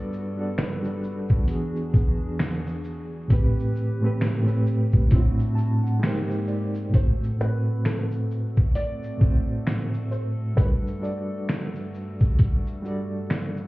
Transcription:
Already playing: analog synth pad G2 G3 B3 F#4 A4, reed electric piano G3 D4 F#4 A4 B4, felt piano D5
0.13 shaker
0.36 reed electric piano G3 D4 F#4
0.40 reed electric piano A4 D5
0.58 felt piano B4, finger snap, snare, closed hi-hat, shaker
0.82 reed electric piano G3 D4 F#4 A4, shaker
0.87 reed electric piano D5
1.04 shaker
1.29 kick, shaker
1.45 analog synth pad E2 E3 D4 G#4, reed electric piano E3 B3 D4 F#4, closed hi-hat, shaker
1.50 reed electric piano G#4
1.76 shaker
1.94 kick, shaker
2.39 finger snap, snare, closed hi-hat, shaker
2.67 shaker
2.84 shaker
3.28 reed electric piano A2 A3 C4, analog synth pad A2 C4 G4 B4, kick, closed hi-hat, shaker
3.32 reed electric piano G4 B4
3.59 shaker
3.76 shaker
4.01 reed electric piano A2 A3 C4 G4
4.06 reed electric piano B4
4.21 finger snap, snare, closed hi-hat, shaker
4.43 reed electric piano A2 A3 C4
4.47 reed electric piano G4 B4, shaker
4.67 shaker
4.92 kick, shaker
5.08 reed electric piano A2 A3 D4 E4 F4, analog synth pad A3 D4, kick, closed hi-hat, shaker
5.12 analog synth pad A2 F#4, reed electric piano C4
5.19 reed electric piano F#4
5.39 shaker
5.55 reed electric piano A5, shaker
5.83 reed electric piano F#5, shaker
5.99 analog synth pad G#2 A#3, reed electric piano G#3 D#4 G4 A#4 G5, finger snap
6.04 reed electric piano C5, snare, closed hi-hat, shaker
6.30 shaker
6.48 reed electric piano D5, shaker
6.75 shaker
6.90 reed electric piano A2 A3 C4
6.94 analog synth pad A2 A3 C4 F#4 A4, reed electric piano F#4 C5, felt piano C5, kick, closed hi-hat, shaker
7.23 shaker
7.36 reed electric piano A2 A3 C4 F#4, shaker
7.41 felt piano B4, reed electric piano B4
7.85 felt piano A4, finger snap, snare, closed hi-hat, shaker
8.11 shaker
8.31 shaker
8.57 kick, shaker
8.75 felt piano D5, closed hi-hat, shaker
9.03 shaker
9.18 reed electric piano A2 A3 C4, kick, shaker
9.22 reed electric piano F#4 C5
9.67 finger snap, snare, closed hi-hat, shaker
9.94 shaker
10.11 felt piano C5, shaker
10.54 analog synth pad G2 G3, reed electric piano G3 D4 F#4 A4, felt piano B4, kick, closed hi-hat, shaker
10.60 reed electric piano B4
10.87 shaker
10.99 reed electric piano G3 D4 F#4
11.03 reed electric piano A4 D5, felt piano D5, shaker
11.49 finger snap, snare, closed hi-hat, shaker
11.75 shaker
11.94 shaker
12.20 kick, shaker
12.39 kick, closed hi-hat, shaker
12.67 shaker
12.82 reed electric piano G3 D4 F#4 A4, shaker
12.88 reed electric piano D5
13.30 finger snap, snare, closed hi-hat, shaker
13.57 shaker

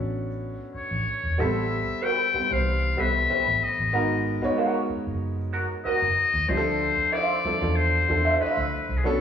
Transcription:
Already playing: fingered electric bass A1, upright piano F#3 B3 C#4 D4 F#4 A4
0.74 muted trumpet C#5, muted fingered electric bass stroke
0.91 fingered electric bass A1
1.23 fingered electric bass E1
1.38 fingered electric bass A1, upright piano G3 B3 C4 E4 A4, muted trumpet E5
1.88 muted fingered electric bass stroke
2.02 clean electric guitar C4 G4 B4, muted trumpet G5
2.34 upright piano G3 B3 C4 E4 B4, muted fingered electric bass stroke
2.50 fingered electric bass C2, upright piano E3 G3 C4 B4 C5, muted trumpet F5
2.97 fingered electric bass C2, upright piano G3 B3 C4 E4 A4, clean electric guitar C4 G4 B4, muted trumpet E5
3.06 upright piano B4
3.30 clean electric guitar C4 G4 B4
3.47 fingered electric bass A1
3.63 muted trumpet D#5
3.79 fingered electric bass A1
3.93 fingered electric bass G#1, upright piano G#3 B3 D#4 F#4 A#4
4.42 upright piano G#3 B3 D#4 F#4 C#5, muted fingered electric bass stroke
4.57 clean electric guitar B3 F#4 A#4
4.90 muted fingered electric bass stroke
5.07 fingered electric bass F#1
5.53 clean electric guitar B3 F#4 A#4
5.85 clean electric guitar B3 F#4 A#4, muted trumpet D#5, muted fingered electric bass stroke
6.02 fingered electric bass F#1
6.34 fingered electric bass D#2
6.48 fingered electric bass D2, upright piano F3 C4 D4 E4 G4, muted trumpet C5
6.57 upright piano A4
6.98 muted fingered electric bass stroke
7.12 clean electric guitar F4 C5 E5, muted trumpet D5
7.44 upright piano F3 C4 D4 E4 A4, muted fingered electric bass stroke
7.61 fingered electric bass E2, upright piano C4 D4 E4 F4 A4
7.76 muted trumpet C5
8.08 fingered electric bass E2, upright piano C4 D4 E4 F4 A4
8.25 clean electric guitar F4 C5 E5
8.40 clean electric guitar F4 C5 E5, muted trumpet B4, muted fingered electric bass stroke
8.57 fingered electric bass D2
8.89 fingered electric bass C2
8.97 muted trumpet G#4
9.04 fingered electric bass B1, upright piano F#3 B3 C#4 D4 A4, muted trumpet A4

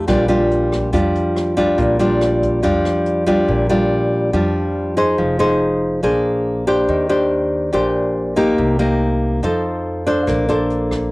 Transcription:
0.08 upright bass A#1, nylon-string guitar A#2 G3 D4 F4, kick, cross-stick, closed hi-hat
0.28 nylon-string guitar G3 D4 F4, closed hi-hat
0.51 closed hi-hat
0.72 kick, cross-stick, closed hi-hat
0.93 upright bass F2, nylon-string guitar F3 G3 D4 F4, kick, closed hi-hat
1.15 closed hi-hat
1.36 cross-stick, closed hi-hat
1.57 nylon-string guitar G3 D4 F4, kick, closed hi-hat
1.78 upright bass A#1, nylon-string guitar A#2, kick, closed hi-hat
1.99 nylon-string guitar G3 D4 F4, closed hi-hat
2.21 cross-stick, closed hi-hat
2.42 kick, closed hi-hat
2.63 upright bass F2, nylon-string guitar F3 G3 D4 F4, kick, closed hi-hat
2.85 cross-stick, closed hi-hat
3.06 closed hi-hat
3.27 nylon-string guitar G3 D4 F4, kick, closed hi-hat
3.48 upright bass A#1, nylon-string guitar A#2
3.69 nylon-string guitar G3 D4 F4
4.33 upright bass F2, nylon-string guitar F3 G3 D4 F4
4.97 nylon-string guitar D#4 G#4 C5
5.18 upright bass F1, nylon-string guitar F3
5.39 nylon-string guitar D#4 G#4 C5
6.03 upright bass A#1, nylon-string guitar A#3 D4 G#4 C5
6.67 nylon-string guitar D4 G4 C5
6.88 upright bass D#2, nylon-string guitar D#3
7.09 nylon-string guitar D4 G4 C5
7.73 upright bass A#1, nylon-string guitar A#2 D4 G4 C5
8.36 nylon-string guitar A#3 D#4 G4
8.58 upright bass C2, nylon-string guitar C3
8.79 nylon-string guitar A#3 D#4 G4
9.43 upright bass F2, nylon-string guitar F3 D#4 A4 C5
10.06 nylon-string guitar D4 A4 C5
10.27 upright bass A#1, nylon-string guitar A#3, kick, cross-stick, closed hi-hat
10.49 nylon-string guitar D4 A4 C5, closed hi-hat
10.70 closed hi-hat
10.91 kick, cross-stick, closed hi-hat

